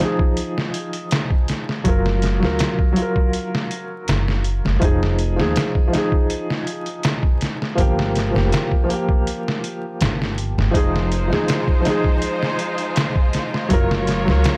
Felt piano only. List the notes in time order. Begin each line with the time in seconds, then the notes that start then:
Already playing: F3 G#4
0.00 D#4
0.05 G#4
1.84 F#3 F4
1.89 A#4
2.40 F#3 F4
2.45 A#4
2.92 F#3
2.97 F4
3.02 A#4
4.80 F3 D#4
4.85 G#4
5.36 F3 D#4
5.41 G#4
5.88 F3
5.93 D#4
5.97 G#4
7.75 F3 A#3
7.80 G4
8.31 F3 A#3
8.36 G4
8.84 F3
8.89 A#3
8.93 G4
10.71 F3 D#4
10.76 G#4
11.28 F3 D#4
11.33 G#4
11.80 F3
11.85 D#4
11.90 G#4
13.69 F#3 F4
13.73 A#4
14.25 F#3 F4
14.30 A#4